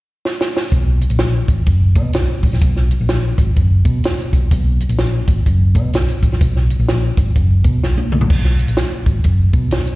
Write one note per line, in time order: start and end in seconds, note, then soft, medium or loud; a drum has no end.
0.25 snare medium
0.41 snare medium
0.57 snare medium
0.72 1.03 B1 loud
0.72 kick loud
0.72 closed hi-hat medium
1.01 closed hi-hat medium
1.10 1.41 A#1 medium
1.10 closed hi-hat medium
1.19 snare loud
1.19 closed hi-hat medium
1.48 1.63 G#1 medium
1.48 kick medium
1.48 closed hi-hat medium
1.66 1.97 F#1 medium
1.66 kick medium
1.66 closed hi-hat medium
1.95 2.11 B2 loud
1.95 kick medium
1.95 closed hi-hat medium
2.13 2.26 B1 medium
2.13 snare loud
2.13 closed hi-hat medium
2.43 2.51 A1 medium
2.43 kick medium
2.43 open hi-hat soft
2.53 2.60 A#1 medium
2.53 snare soft
2.61 2.93 B1 loud
2.61 kick loud
2.61 closed hi-hat medium
2.76 snare soft
2.91 closed hi-hat medium
3.01 3.32 A#1 medium
3.09 snare loud
3.09 closed hi-hat medium
3.38 3.53 G#1 medium
3.38 kick medium
3.38 closed hi-hat medium
3.56 3.80 F#1 medium
3.56 kick medium
3.56 closed hi-hat medium
3.85 4.00 B2 loud
3.85 kick medium
3.85 closed hi-hat medium
4.04 snare loud
4.04 closed hi-hat medium
4.18 muted fingered electric bass stroke soft
4.18 closed hi-hat soft
4.33 4.48 B1 medium
4.33 kick medium
4.33 closed hi-hat medium
4.51 4.83 B1 loud
4.51 kick loud
4.51 closed hi-hat medium
4.80 closed hi-hat medium
4.89 5.21 A#1 medium
4.89 closed hi-hat medium
4.99 snare loud
4.99 closed hi-hat medium
5.28 5.43 G#1 medium
5.28 kick medium
5.28 closed hi-hat medium
5.46 5.77 F#1 medium
5.46 kick medium
5.46 closed hi-hat medium
5.75 5.90 B2 loud
5.75 kick medium
5.75 closed hi-hat medium
5.93 6.06 B1 medium
5.93 snare medium
5.93 closed hi-hat medium
6.08 closed hi-hat medium
6.23 6.30 A1 medium
6.23 kick medium
6.23 closed hi-hat medium
6.32 6.39 A#1 medium
6.32 snare soft
6.41 6.72 B1 loud
6.41 kick loud
6.41 closed hi-hat medium
6.56 snare soft
6.70 closed hi-hat medium
6.79 7.10 A#1 medium
6.89 snare loud
6.89 closed hi-hat medium
7.17 7.32 G#1 medium
7.17 kick medium
7.17 closed hi-hat medium
7.36 7.59 F#1 medium
7.36 kick medium
7.36 closed hi-hat medium
7.64 7.79 B2 loud
7.64 kick medium
7.64 closed hi-hat medium
7.83 7.95 B1 medium
7.83 snare medium
7.98 high tom medium
8.12 8.19 B1 loud
8.12 mid tom medium
8.21 8.29 A#1 medium
8.21 floor tom medium
8.30 8.61 B1 loud
8.30 kick medium
8.30 crash medium
8.45 snare soft
8.59 closed hi-hat medium
8.68 8.76 A#1 medium
8.68 closed hi-hat medium
8.77 snare loud
8.77 closed hi-hat medium
8.92 muted fingered electric bass stroke soft
9.06 9.21 G#1 medium
9.06 kick medium
9.06 closed hi-hat medium
9.24 9.49 F#1 medium
9.24 kick medium
9.24 closed hi-hat medium
9.53 9.69 B2 loud
9.53 kick medium
9.53 closed hi-hat medium
9.71 9.84 B1 medium
9.71 snare medium
9.71 closed hi-hat medium
9.86 closed hi-hat medium